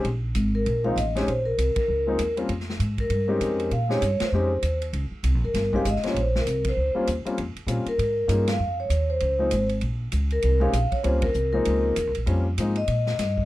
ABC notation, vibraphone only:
X:1
M:4/4
L:1/8
Q:"Swing" 1/4=196
K:Bbdor
V:1 name="Vibraphone"
z3 B2 f e d | c B2 B4 z | z3 B4- B | f d2 c4 z |
z3 B2 f e d | c B2 c3 z2 | z3 B4 f- | f d2 c4 z |
z3 B2 f2 d | c B2 B4 z | z3 e4- e |]